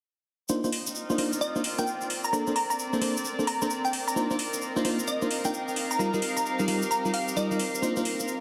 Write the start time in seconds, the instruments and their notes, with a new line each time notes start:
0.49 fm electric piano A#3 D4 D#4 F4 C5, ambient pad C4 C5, string section C4, shaker
0.60 fm electric piano A#3 D4 D#4 F4 C5, string section D#4, shaker
0.72 open hi-hat
0.87 shaker
0.95 string section F4, shaker
1.10 fm electric piano A#3 D4 D#4 F4 C5, shaker
1.18 fm electric piano A#3 D4 D#4 F4 C5, string section A#4, open hi-hat
1.22 string section D5
1.33 shaker
1.41 synth pluck D#5, shaker
1.56 fm electric piano A#3 D4 D#4 F4 C5, shaker
1.64 open hi-hat
1.79 fm electric piano A#3 D4 D#4 F4 A#4, synth pluck G5, shaker
1.87 shaker
2.01 shaker
2.10 open hi-hat
2.24 synth pluck A#5, shaker
2.33 fm electric piano A#3 D4 A4 C5, synth pluck A#5, shaker
2.47 fm electric piano A#3 D4 A4 C5, shaker
2.56 synth pluck A#5, open hi-hat
2.70 synth pluck A#5, shaker
2.79 shaker
2.93 fm electric piano A#3 D4 A4 C5, shaker
3.01 fm electric piano A#3 D4 A4 C5, open hi-hat
3.17 shaker
3.25 shaker
3.39 fm electric piano A#3 D4 A4 C5, shaker
3.47 synth pluck A#5, open hi-hat
3.62 fm electric piano A#3 D4 A4 C5, synth pluck A#5, shaker
3.70 shaker
3.85 synth pluck G5, shaker
3.93 open hi-hat
4.08 synth pluck A#5, shaker
4.12 fm electric piano A#3 D4 D#4 F4 C5, string section D#4
4.17 shaker
4.31 fm electric piano A#3 D4 D#4 F4 C5, shaker
4.39 open hi-hat
4.50 string section F5, shaker
4.61 shaker
4.76 fm electric piano A#3 D4 D#4 F4 C5, shaker
4.85 fm electric piano A#3 D4 D#4 F4 C5, open hi-hat
4.99 shaker
5.07 synth pluck D#5, shaker
5.22 fm electric piano A#3 D4 D#4 F4 C5, shaker
5.31 open hi-hat
5.45 fm electric piano A#3 D4 D#4 F4 A#4, synth pluck G5, shaker
5.54 shaker
5.68 shaker
5.76 open hi-hat
5.91 synth pluck A#5, shaker
5.99 fm electric piano G3 D#4 F4 A#4, synth pluck A#5, shaker
6.05 string section G4
6.14 fm electric piano G3 D#4 F4 A#4, shaker
6.22 open hi-hat
6.37 synth pluck A#5, shaker
6.46 shaker
6.59 fm electric piano G3 D#4 F4 A#4, shaker
6.68 fm electric piano G3 D#4 F4 A#4, open hi-hat
6.82 shaker
6.91 synth pluck A#5, shaker
7.05 fm electric piano G3 D#4 F4 A#4, shaker
7.14 synth pluck F5, open hi-hat
7.28 shaker
7.36 fm electric piano G3 D#4 F4 A#4, synth pluck D#5, shaker
7.51 fm electric piano G3 D#4 F4 A#4, shaker
7.59 open hi-hat
7.75 shaker
7.82 fm electric piano A#3 D4 D#4 F4 C5, string section C4, shaker
7.96 fm electric piano A#3 D4 D#4 F4 C5, shaker
8.05 open hi-hat
8.20 shaker
8.28 shaker